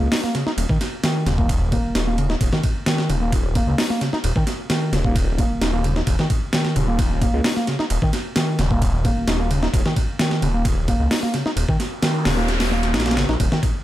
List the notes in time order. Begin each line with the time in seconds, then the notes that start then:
Already playing: A#3
0.00 C#2
0.12 D#4, snare, open hi-hat
0.23 A#3, snare
0.35 C#3, snare, ride
0.46 D#4, snare
0.57 D#1, ride
0.69 D#3, kick
0.81 snare, ride
1.03 D#3, snare, ride
1.26 D#1 C#3, snare, ride
1.38 A#3, kick
1.49 kick, ride
1.72 A#3, kick, ride
1.84 D#1
1.95 D#1 D#4, snare, ride
2.07 A#3
2.18 C#3, ride
2.30 D#4, snare
2.41 D#1, kick, ride
2.53 D#3, snare
2.63 kick, ride
2.86 D#3, snare, ride
2.98 snare
3.09 D#1 C#3, ride
3.21 A#3
3.32 kick, ride
3.55 A#3, kick, ride
3.67 C#2
3.78 D#4, snare, open hi-hat
3.90 A#3, snare
4.01 C#3, snare, ride
4.13 D#4, snare
4.24 D#1, ride
4.36 D#3, kick
4.47 snare, ride
4.70 D#3, snare, ride
4.92 D#1 C#3, snare, ride
5.04 A#3, kick
5.16 kick, ride
5.38 A#3, kick, ride
5.51 D#1
5.61 D#1 D#4, snare, ride
5.73 A#3
5.84 C#3, ride
5.96 D#4, snare
6.07 D#1, kick, ride
6.19 D#3, snare
6.30 kick, ride
6.53 D#3, snare, ride
6.65 snare
6.76 D#1 C#3, ride
6.88 A#3
6.99 kick, ride
7.21 A#3, kick, ride
7.34 C#2
7.44 D#4, snare, open hi-hat
7.56 A#3, snare
7.67 C#3, snare, ride
7.79 D#4, snare
7.90 D#1, ride
8.02 D#3, kick
8.13 snare, ride
8.36 D#3, snare, ride
8.59 D#1 C#3, snare, ride
8.71 A#3, kick
8.82 kick, ride
9.05 A#3, kick, ride
9.17 D#1
9.28 D#1 D#4, snare, ride
9.40 A#3
9.51 C#3, ride
9.62 D#4, snare
9.73 D#1, kick, ride
9.85 D#3, snare
9.96 kick, ride
10.19 D#3, snare, ride
10.31 snare
10.42 D#1 C#3, ride
10.54 A#3
10.65 kick, ride
10.88 A#3, kick, ride
11.00 C#2
11.11 D#4, snare, open hi-hat
11.23 A#3, snare
11.34 C#3, snare, ride
11.46 D#4, snare
11.56 D#1, ride, noise sweep
11.69 D#3, kick
11.80 snare, ride
12.03 D#3, snare, ride
12.25 D#1 C#3, snare, open hi-hat
12.37 A#3, snare
12.48 snare, ride
12.60 snare, open hi-hat
12.71 A#3, snare
12.83 snare, ride
12.94 A#1 D#4, snare, ride
13.00 snare, ride
13.06 A#3, snare, ride
13.11 snare, ride
13.17 G#1 C#3, snare, ride
13.29 A#1 D#4, snare
13.40 D#1, kick, ride
13.52 D#3, snare
13.63 kick, ride